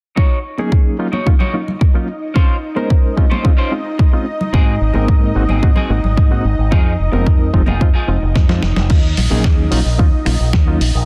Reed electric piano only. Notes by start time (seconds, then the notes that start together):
0.17 F#3 A#3 C#4 D#4 F4
0.58 F#3 A#3 C#4 D#4 G#4
0.99 F#3 A#3 C#4 D#4 F4
1.26 F#3 A#3 C#4 D#4 F4
1.53 F#3 A#3 C#4 D#4 F4
1.94 F#3 A#3 C#4 D#4 F4
2.35 G#3 C4 C#4 D#4 F4
2.76 G#3 C#4 D#4 A#4 C5
3.17 G#3 C4 C#4 D#4 F4
3.44 G#3 C4 C#4 D#4 F4
3.71 G#3 C4 C#4 D#4 F4
4.13 G#3 C4 C#4 D#4 F4
4.53 G#3 A#3 C4 D#4 F#4
4.94 G#3 A#3 C4 D#4 A#4
5.35 G#3 A#3 C4 D#4 F#4
5.62 G#3 A#3 C4 D#4 F#4
5.90 G#3 A#3 C4 D#4 F#4
6.31 G#3 A#3 C4 D#4 F#4
6.71 F3 G#3 C4 D#4 F4
7.12 F3 G#3 C4 D#4 A#4
7.53 F3 G#3 C4 D#4 F4
7.81 F3 G#3 C4 D#4 F4
8.08 F3 G#3 C4 D#4 F4
8.48 F3 G#3 C4 D#4 F4
8.89 F#3 A#3 C#4 D#4 F4
9.30 F#3 A#3 C#4 D#4 G#4
9.71 F#3 A#3 C#4 D#4 F4
9.98 F#3 A#3 C#4 D#4 F4
10.26 F#3 A#3 C#4 D#4 F4
10.67 F#3 A#3 C#4 D#4 F4